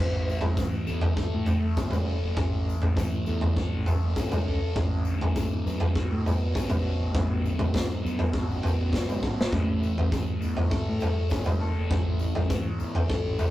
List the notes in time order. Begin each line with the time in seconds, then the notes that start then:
Already playing: A1 A2
0.27 E3, tambourine
0.41 A1, floor tom
0.57 E3, kick, tambourine
0.73 tambourine
0.87 E2 A3, tambourine
1.01 floor tom
1.17 A4, kick, tambourine
1.34 A2
1.46 A3, floor tom, tambourine
1.77 F#1 C#4, kick, tambourine
1.91 floor tom, mid tom, tambourine
2.06 A4
2.23 F#1
2.36 A1 A2, kick, floor tom
2.65 E3, tambourine
2.82 A1, floor tom
2.96 E3, kick, tambourine
3.13 tambourine
3.26 E2 A3, tambourine
3.41 floor tom
3.57 A4, kick, tambourine
3.74 A1
3.86 A3, floor tom, tambourine
4.03 F#1
4.16 C#4, kick, tambourine
4.32 floor tom, mid tom, tambourine
4.47 C#2 A4
4.76 A1 A2, kick, floor tom
5.05 D3, tambourine
5.21 A1, floor tom
5.36 D3, kick, tambourine
5.52 tambourine
5.66 F#2 B3, tambourine
5.80 floor tom
5.95 F#4, kick, tambourine
6.12 A2
6.25 B3, floor tom, tambourine
6.54 A1 C#4, kick, tambourine
6.70 floor tom, mid tom, tambourine
6.83 F#4
7.00 A1
7.12 A1 A2, kick, floor tom, tambourine
7.42 D3, tambourine
7.59 A1, floor tom, mid tom, tambourine
7.73 D3, kick, snare, tambourine
7.92 tambourine
8.03 F#2 B3, tambourine
8.19 floor tom, tambourine
8.33 F#4, kick, tambourine
8.49 A1, tambourine
8.63 B3, floor tom, tambourine
8.79 A1
8.92 F#1 C#4, kick, snare, tambourine
9.09 mid tom, tambourine
9.22 A1 F#4, kick
9.39 snare, tambourine
9.51 A1 A2, kick, floor tom
9.82 E3, tambourine
9.98 A1, floor tom
10.11 E3, kick, tambourine
10.28 tambourine
10.41 E2 A3, tambourine
10.57 floor tom
10.70 A4, kick, tambourine
10.89 A2
11.00 A3, floor tom, tambourine
11.30 F#1 C#4, kick, tambourine
11.44 floor tom, mid tom, tambourine
11.61 A4
11.77 F#1
11.90 A1 A2, kick, floor tom
12.19 E3, tambourine
12.35 A1, floor tom
12.49 E3, kick, tambourine
12.79 E2 A3, tambourine
12.95 floor tom
13.09 A4, kick, tambourine
13.26 A1
13.39 A3, floor tom, tambourine